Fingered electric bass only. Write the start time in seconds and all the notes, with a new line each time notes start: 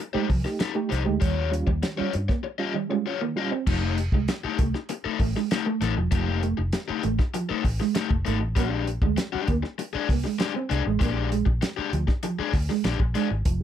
0.15 muted fingered electric bass stroke
0.30 C2
0.92 C2
1.08 D2
1.22 D#2
1.67 D#2
2.01 muted fingered electric bass stroke
2.15 G2
3.67 F1
4.13 C2
4.45 muted fingered electric bass stroke
4.59 C2
5.05 muted fingered electric bass stroke
5.20 A1
5.82 A1
5.98 E1
6.12 F1
6.59 F1
6.90 muted fingered electric bass stroke
7.05 A1
7.51 muted fingered electric bass stroke
7.65 A1
8.11 F1
8.27 G#1
8.43 A1
8.57 A#1
9.02 D2
9.35 muted fingered electric bass stroke
9.48 D2
9.95 muted fingered electric bass stroke
10.10 C2
10.71 C2
10.87 A1
11.02 A#1
11.47 A#1
11.79 muted fingered electric bass stroke
11.93 D2
12.39 muted fingered electric bass stroke
12.54 D2
12.85 A#1
13.00 A#1
13.31 G#1
13.46 F1